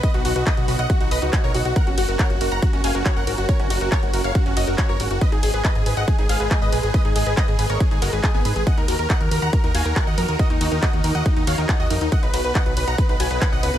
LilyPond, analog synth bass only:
\new Staff \with { instrumentName = "Analog synth bass" } { \clef bass \time 4/4 \key ees \minor \tempo 4 = 139 r16 b,,16 b,,16 b,,16 r16 b,,16 b,,16 b,,16 r16 b,,16 b,,16 des,16 r16 b,,16 b,,16 b,,16 | r16 ges,,16 ges,,16 ges,,16 r16 ges,,16 ges,,16 ges,,16 r16 ges,,16 ges,,16 ges,,16 r16 ges,,16 aes,,16 ges,,16 | r16 ges,,16 ges,,16 ges,,16 r16 ges,,16 ges,,16 ges,,16 r16 ges,,16 ges,,16 ges,,16 r16 ges,,16 aes,,16 ges,,16 | r16 aes,,16 aes,,16 aes,,16 r16 aes,,16 aes,,16 aes,,16 r16 aes,,16 aes,,16 aes,,16 r16 aes,,16 bes,,16 aes,,16 |
r16 aes,,16 aes,,16 aes,,16 r16 aes,,16 aes,,16 aes,,16 r16 aes,,16 ges,,16 aes,,16 r16 aes,,16 aes,16 aes,,16 | r16 ees,16 ees,16 ees,16 r16 ees,16 ees,16 ees,16 r16 ees,16 ees,16 ees,16 r16 ees,16 f,16 ees,16 | r16 ees,16 ees,16 ees,16 r16 ees,16 ees,16 ees,16 r16 ees,16 ees,16 ees,16 r16 ees,16 f,16 ees,16 | r16 b,,16 b,,16 b,,16 r16 b,,16 b,,16 b,,16 r16 b,,16 b,,16 b,,16 r16 b,,16 des,16 b,,16 | }